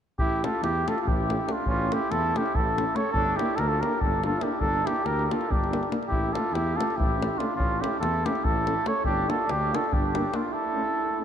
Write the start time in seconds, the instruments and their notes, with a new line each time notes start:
0.19 tuba A1, trumpet E4, cornet G4, davul low
0.43 euphonium A3, french horn C#4, trumpet F4, cornet A4, davul high
0.62 tuba E2, trumpet E4, cornet G4, davul high
0.87 euphonium A3, french horn C#4, trumpet F4, cornet A4, davul high
0.98 trumpet F4, cornet A4, davul high
1.06 tuba A1, trumpet E4, cornet G4, davul low
1.30 euphonium A3, french horn C#4, davul high
1.47 euphonium A3, french horn C#4, trumpet D4, davul high
1.52 cornet F4
1.66 tuba A1, trumpet C#4, davul low
1.70 cornet F4
1.91 euphonium A3, french horn C#4, trumpet E4, cornet G4, davul high
2.10 tuba E2, trumpet E4, cornet A4, davul high
2.36 euphonium A3, french horn C#4, trumpet E4, cornet G4, davul high
2.46 davul high
2.54 tuba A1, trumpet E4, cornet A4, davul low
2.78 euphonium A3, french horn C#4, davul high
2.95 euphonium A3, french horn C#4, trumpet A4, cornet C#5, davul high
3.13 tuba G1, trumpet D4, cornet A4, davul low
3.36 euphonium A#3, french horn D4, trumpet E4, cornet G4, davul high
3.56 tuba D2, trumpet D4, cornet A4, davul high
3.60 trumpet G4, cornet A#4
3.68 trumpet F4, cornet A4
3.81 euphonium A#3, french horn D4, trumpet G4, cornet A#4, davul high
3.93 davul high
4.01 tuba G1, trumpet D4, cornet A4, davul low
4.23 euphonium A#3, french horn D4, trumpet F4, cornet A4, davul high
4.41 euphonium A#3, french horn D4, trumpet E4, cornet G4, davul high
4.59 tuba G1, trumpet D4, cornet A4, davul low
4.73 davul high
4.83 euphonium A#3, french horn D4, trumpet E4, cornet G4
4.87 davul high
4.96 davul high
5.03 tuba D2, trumpet G4, cornet A#4, davul high
5.19 davul high
5.25 french horn D4, trumpet G4, cornet A#4
5.30 euphonium A#3, trumpet F4, cornet A4, davul high
5.41 davul high
5.49 tuba G1, trumpet D4, cornet G4, davul low
5.64 davul high
5.71 euphonium A#3, french horn D4, davul high
5.83 davul high
5.89 euphonium A#3, french horn D4, davul high
6.02 davul high
6.08 tuba A1, trumpet E4, cornet G4
6.12 davul low
6.32 euphonium A3, french horn C#4, trumpet F4, cornet A4, davul high
6.52 tuba E2, trumpet E4, cornet G4, davul high
6.76 french horn C#4, trumpet F4, cornet A4
6.80 euphonium A3, davul high
6.90 davul high
6.96 tuba A1, trumpet E4, cornet G4
7.00 davul low
7.18 euphonium A3, french horn C#4
7.22 davul high
7.38 euphonium A3, french horn C#4, trumpet D4, cornet F4, davul high
7.56 tuba A1, trumpet C#4, cornet F4, davul low
7.81 euphonium A3, french horn C#4, trumpet E4, cornet G4, davul high
7.99 tuba E2, trumpet E4, cornet A4, davul high
8.26 euphonium A3, french horn C#4, trumpet E4, cornet G4, davul high
8.35 davul high
8.44 tuba A1, trumpet E4, cornet A4, davul low
8.67 euphonium A3, french horn C#4, davul high
8.85 euphonium A3, french horn C#4, trumpet A4, cornet C#5, davul high
9.04 tuba G1, trumpet D4, cornet G4, davul low
9.26 euphonium A#3, french horn D4, trumpet F4, cornet A4, davul high
9.46 tuba D2, trumpet D4, davul high
9.51 cornet G4
9.72 euphonium A#3, french horn D4, trumpet F4, cornet A4, davul high
9.84 davul high
9.88 trumpet D4
9.93 tuba G1, cornet G4, davul low
10.13 euphonium A#3, french horn D4, davul high
10.32 euphonium A#3, trumpet D4, french horn D4, cornet F4, davul high
10.50 trumpet E4, cornet A4
10.74 euphonium A3, french horn C#4
11.20 euphonium A3, french horn C#4